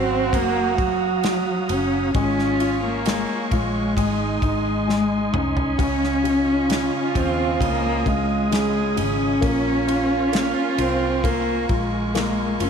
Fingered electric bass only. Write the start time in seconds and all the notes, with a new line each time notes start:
Already playing: G#1
0.33 F#1
1.70 F#1
2.15 G#1
3.52 A#1
3.97 G#1
4.42 G#1
5.34 C2
5.79 C#2
7.15 D#2
7.61 C#2
8.97 G#1
9.42 A#1
10.78 C2
11.70 A#1
12.60 F#1